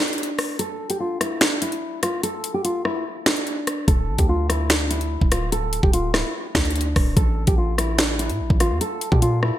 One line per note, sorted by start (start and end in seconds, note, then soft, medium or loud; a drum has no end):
0.00 0.55 D4 medium
0.08 closed hi-hat soft
0.13 closed hi-hat medium
0.18 closed hi-hat medium
0.23 closed hi-hat medium
0.38 cross-stick loud
0.38 open hi-hat medium
0.59 0.88 A4 loud
0.59 closed hi-hat medium
0.90 1.00 G4 medium
0.90 closed hi-hat medium
1.00 1.20 F4 medium
1.21 1.40 E4 medium
1.21 cross-stick medium
1.21 closed hi-hat medium
1.41 1.61 D4 medium
1.41 finger snap medium
1.41 snare loud
1.41 closed hi-hat medium
1.62 2.00 E4 medium
1.62 closed hi-hat medium
1.72 closed hi-hat soft
2.03 2.22 F4 medium
2.03 cross-stick medium
2.03 closed hi-hat medium
2.23 2.52 A4 loud
2.23 closed hi-hat medium
2.44 closed hi-hat medium
2.54 2.64 G4 medium
2.64 2.84 F4 medium
2.64 closed hi-hat medium
2.85 3.04 E4 medium
2.85 cross-stick medium
3.26 3.84 D4 medium
3.26 finger snap medium
3.26 snare loud
3.36 closed hi-hat medium
3.47 closed hi-hat medium
3.67 cross-stick medium
3.67 closed hi-hat medium
3.88 4.10 D1 loud
3.88 4.17 A4 loud
3.88 kick loud
3.88 closed hi-hat medium
4.08 4.18 A1 loud
4.18 5.17 D2 loud
4.18 4.28 G4 medium
4.18 kick loud
4.18 closed hi-hat medium
4.29 4.48 F4 medium
4.50 4.69 E4 medium
4.50 cross-stick medium
4.50 closed hi-hat medium
4.70 4.90 D4 medium
4.70 finger snap medium
4.70 snare loud
4.70 closed hi-hat medium
4.91 5.29 E4 medium
4.91 closed hi-hat medium
5.01 closed hi-hat soft
5.21 5.81 D1 loud
5.21 kick loud
5.32 5.51 F4 medium
5.32 cross-stick medium
5.32 closed hi-hat medium
5.52 5.81 A4 loud
5.52 closed hi-hat medium
5.73 closed hi-hat medium
5.83 6.15 D1 loud
5.83 5.93 G4 medium
5.83 kick loud
5.93 6.13 F4 medium
5.93 closed hi-hat medium
6.14 6.24 C#1 loud
6.14 6.33 E4 medium
6.14 cross-stick loud
6.14 snare medium
6.55 6.94 D2 loud
6.55 7.13 D4 medium
6.55 finger snap medium
6.55 kick medium
6.55 snare loud
6.65 closed hi-hat soft
6.70 closed hi-hat medium
6.76 closed hi-hat medium
6.81 closed hi-hat medium
6.96 7.16 D1 loud
6.96 kick loud
6.96 cross-stick medium
6.96 open hi-hat medium
7.17 7.46 A1 loud
7.17 7.46 A4 loud
7.17 kick loud
7.17 closed hi-hat medium
7.47 8.31 A1 loud
7.47 7.57 G4 medium
7.47 kick loud
7.47 closed hi-hat medium
7.58 7.77 F4 medium
7.78 7.98 E4 medium
7.78 cross-stick medium
7.78 closed hi-hat medium
7.98 8.18 D4 medium
7.98 finger snap medium
7.98 snare loud
7.98 closed hi-hat medium
8.19 8.58 E4 medium
8.19 closed hi-hat medium
8.29 8.41 A2 loud
8.29 closed hi-hat soft
8.40 8.50 A1 loud
8.50 8.72 A1 loud
8.50 kick loud
8.60 8.80 F4 medium
8.60 cross-stick medium
8.60 closed hi-hat medium
8.71 8.81 E2 loud
8.81 9.10 A4 loud
8.81 closed hi-hat medium
9.01 closed hi-hat medium
9.12 9.51 A#2 loud
9.12 9.22 G4 medium
9.12 kick loud
9.22 9.42 F4 medium
9.22 closed hi-hat medium
9.43 9.59 E4 medium
9.43 cross-stick medium